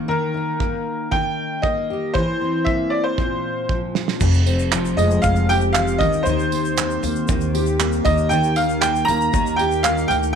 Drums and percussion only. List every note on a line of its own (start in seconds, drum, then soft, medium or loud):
0.60 kick loud
1.12 kick medium
1.63 kick loud
2.15 kick loud
2.67 kick medium
3.18 kick loud
3.69 kick loud
3.95 snare medium
4.08 snare medium
4.21 kick loud
4.21 crash loud
4.21 shaker medium
4.34 shaker soft
4.46 tambourine medium
4.59 shaker soft
4.72 clap loud
4.72 shaker medium
4.85 shaker medium
4.98 tambourine medium
4.98 shaker soft
5.11 shaker medium
5.23 kick loud
5.23 shaker medium
5.36 shaker soft
5.50 tambourine medium
5.61 shaker soft
5.75 clap loud
5.75 shaker medium
5.88 shaker medium
6.01 kick medium
6.01 tambourine medium
6.13 shaker soft
6.26 shaker medium
6.39 shaker soft
6.52 tambourine medium
6.65 shaker soft
6.77 clap loud
6.77 shaker medium
6.91 shaker soft
7.03 tambourine medium
7.03 shaker soft
7.16 shaker soft
7.28 kick loud
7.28 shaker medium
7.41 shaker soft
7.55 tambourine medium
7.66 shaker soft
7.80 clap loud
7.80 shaker medium
7.92 shaker medium
8.06 kick loud
8.06 tambourine medium
8.18 shaker soft
8.31 shaker medium
8.44 shaker soft
8.56 tambourine medium
8.69 shaker soft
8.82 clap loud
8.82 shaker medium
8.96 shaker medium
9.08 tambourine medium
9.08 shaker soft
9.21 shaker soft
9.33 kick loud
9.33 shaker medium
9.47 shaker soft
9.59 tambourine medium
9.71 shaker soft
9.85 clap loud
9.85 shaker medium
9.98 shaker medium
10.11 tambourine medium
10.23 shaker medium